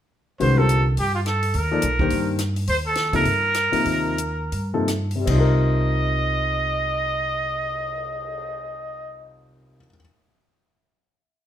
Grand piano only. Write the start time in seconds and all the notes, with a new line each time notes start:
0.40 D#3 G#3 C#4 F#4 B4
0.57 D3 G3 C4 F4 A#4
1.71 F3 A#3 D#4 A4 D5
2.00 D#3 A#3 D4 G4 C5
3.13 C3 F3 A#3 D#4 A4
3.72 C3 F3 A#3 D#4 A#4
4.74 C3 F3 A#3 D#4 A4
5.16 C3
5.20 G3
5.26 C4
5.31 D#4
5.35 F4
5.40 A#4